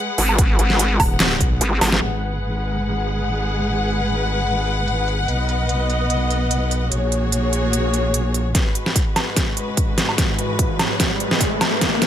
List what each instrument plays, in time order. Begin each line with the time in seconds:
Already playing: string section G#3 G#4 B4 F#5
0.18 wobble bass G#1, open hi-hat
0.29 low woodblock
0.39 kick, closed hi-hat
0.59 wobble bass G#1, closed hi-hat
0.70 snare
0.79 closed hi-hat
1.00 wobble bass D#1, kick, open hi-hat, low woodblock
1.20 snare, clap, closed hi-hat
1.41 wobble bass B1, kick, closed hi-hat
1.61 wobble bass G#1, closed hi-hat
1.81 wobble bass G#1, snare, open hi-hat, low woodblock
1.92 snare
2.02 wobble bass G#1, string section G#3 G#4 B4 F#5
2.22 closed hi-hat
2.43 closed hi-hat
2.63 closed hi-hat
2.83 closed hi-hat
3.04 closed hi-hat
3.24 closed hi-hat
3.45 closed hi-hat
3.65 closed hi-hat
3.85 closed hi-hat
4.06 closed hi-hat
4.26 closed hi-hat
4.47 closed hi-hat
4.67 closed hi-hat
4.87 closed hi-hat
5.08 closed hi-hat
5.28 wobble bass B1, string section B3 D#5, closed hi-hat
5.49 closed hi-hat
5.69 closed hi-hat
5.90 closed hi-hat
6.10 closed hi-hat
6.30 closed hi-hat
6.51 closed hi-hat
6.71 closed hi-hat
6.92 wobble bass A#1, string section A#3 F#4 G#4 C#5, closed hi-hat
7.12 closed hi-hat
7.32 closed hi-hat
7.53 closed hi-hat
7.73 closed hi-hat
7.94 closed hi-hat
8.14 closed hi-hat
8.34 closed hi-hat
8.55 string section G#2 G#3 F#4 B4, kick, snare, closed hi-hat, riser
8.75 closed hi-hat
8.86 snare
8.96 kick, closed hi-hat
9.16 snare, closed hi-hat, low woodblock
9.37 kick, snare, closed hi-hat
9.57 closed hi-hat
9.77 kick, closed hi-hat
9.98 snare, closed hi-hat
10.09 low woodblock
10.18 kick, snare, closed hi-hat
10.39 closed hi-hat
10.59 kick, closed hi-hat
10.79 snare, closed hi-hat, low woodblock
11.00 kick, snare, closed hi-hat
11.20 closed hi-hat
11.31 snare
11.41 kick, closed hi-hat
11.61 snare, closed hi-hat, low woodblock
11.81 string section B2 F#3 D#4, kick, snare, closed hi-hat
12.02 snare, closed hi-hat